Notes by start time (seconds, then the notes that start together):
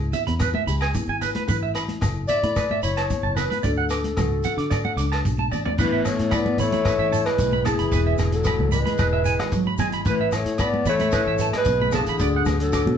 Already playing: C#2 B3 E4
0.13 E5, closed hi-hat, low conga, shekere
0.27 E2 B5, closed hi-hat, low conga
0.39 B2 B4, kick, cross-stick, closed hi-hat, low agogo, shekere
0.54 E5, high conga
0.67 C#2 G#4 B5, closed hi-hat, shekere
0.81 G#5, cross-stick, closed hi-hat, low agogo
0.94 B3 E4, kick, closed hi-hat, shekere
1.08 G#1 G#5
1.21 B4, closed hi-hat, low conga, low agogo, shekere
1.35 B4, closed hi-hat, high conga
1.48 A1 A2 E4 B4, kick, closed hi-hat, shekere
1.63 E5
1.75 B5, cross-stick, closed hi-hat, low agogo, shekere
1.88 closed hi-hat, high conga
2.01 F#1 E3 A4, kick, cross-stick, closed hi-hat, low agogo, shekere
2.28 D5 E5, closed hi-hat, low conga, shekere
2.43 A2 B5, closed hi-hat, low conga
2.56 A2 B4, kick, cross-stick, closed hi-hat, low agogo, shekere
2.71 E5, high conga
2.83 F#1 E4 C#5 B5, closed hi-hat, shekere
2.97 A5, cross-stick, closed hi-hat, low agogo
3.09 E3 B3, kick, closed hi-hat, shekere
3.23 F#1 A5
3.36 B4, cross-stick, closed hi-hat, low conga, low agogo, shekere
3.50 B4, closed hi-hat, high conga
3.63 D2 D3 D4 A4 D5, kick, closed hi-hat, shekere
3.78 F#5
3.90 D6, cross-stick, closed hi-hat, low agogo, shekere
4.04 closed hi-hat, high conga
4.17 C#2 F#3 F#4, kick, cross-stick, closed hi-hat, low agogo, shekere
4.43 F#5, closed hi-hat, low conga, shekere
4.57 D3 D6, closed hi-hat
4.70 A2 D5, kick, cross-stick, closed hi-hat, low agogo, shekere
4.85 F#5, high conga
4.96 C#2 D4 D6, closed hi-hat, shekere
5.12 A5, cross-stick, closed hi-hat, low agogo
5.25 B1 F#3, kick, closed hi-hat, shekere
5.39 A5, high conga
5.51 A1 D5, low conga, low agogo, shekere
5.65 D5, floor tom, high conga
5.78 A1 A2 E3 B3 E4 B4, kick, crash, shekere
5.83 E3
5.92 E5
6.05 E4 C#5, cross-stick, closed hi-hat, low agogo, shekere
6.09 A3
6.19 A2, closed hi-hat, shekere
6.31 E4 D5 B5, kick, cross-stick, closed hi-hat, low agogo, shekere
6.36 B3
6.46 high conga
6.57 A1 E3 C#5 B5, closed hi-hat, low conga, shekere
6.63 A3
6.72 B5, closed hi-hat, high conga, shekere
6.85 E4 B4, kick, cross-stick, closed hi-hat, low agogo, shekere
6.99 A1 E5
7.11 E4 A5, closed hi-hat, shekere
7.26 G#3 B4, cross-stick, closed hi-hat, low agogo
7.38 B1 A2, kick, closed hi-hat, shekere
7.52 B5, high conga
7.65 E3 E4 G#4 A5, cross-stick, closed hi-hat, low conga, low agogo, shekere
7.79 F#1 B5, closed hi-hat, shekere
7.92 E1 E3 B4, kick, closed hi-hat, shekere
8.07 E5
8.18 E1 E4, cross-stick, closed hi-hat, low agogo, shekere
8.32 F#3 A4, closed hi-hat, shekere
8.44 E4 B5, kick, cross-stick, closed hi-hat, low agogo, shekere
8.59 C#2, high conga
8.72 G#3 B4 B5, closed hi-hat, low conga, shekere
8.86 B5, closed hi-hat, high conga, shekere
8.98 E1 E4 B4, kick, cross-stick, closed hi-hat, low agogo, shekere
9.13 E5
9.25 E4 G#5, closed hi-hat, shekere
9.39 G#1, cross-stick, closed hi-hat, low agogo
9.51 F#3, kick, closed hi-hat, shekere
9.67 B5, high conga
9.78 G#1 G#3 G#5, closed hi-hat, low conga, low agogo, shekere
9.92 B5, closed hi-hat, shekere
10.05 A1 A2 B4, kick, closed hi-hat, shekere
10.09 E3 B4
10.21 E5
10.32 E4 C#5, cross-stick, closed hi-hat, low agogo, shekere
10.36 A3
10.46 A2, closed hi-hat, shekere
10.58 B3 B4 D5 B5, kick, cross-stick, closed hi-hat, low agogo, shekere
10.74 high conga
10.85 A1 E3 B5, closed hi-hat, low conga, shekere
10.89 A3 C#5
10.99 B5, closed hi-hat, high conga, shekere
11.11 E4 B4, kick, cross-stick, closed hi-hat, low agogo, shekere
11.26 A1 E5
11.38 B4 A5, closed hi-hat, shekere
11.53 G#3, cross-stick, closed hi-hat, low agogo
11.58 B4
11.64 B1 B2, kick, closed hi-hat, shekere
11.81 B5, high conga
11.91 C#3 D3 G#4, cross-stick, closed hi-hat, low conga, low agogo, shekere
11.95 A5
12.06 A1 B5, closed hi-hat, shekere
12.18 D2 D3 D5, kick, closed hi-hat, shekere
12.36 F#5
12.45 D2 F#4, cross-stick, closed hi-hat, high conga, low agogo, shekere
12.60 F#3 A4, closed hi-hat, shekere
12.73 F#4 D6, kick, cross-stick, closed hi-hat, low agogo, shekere
12.86 B2, high conga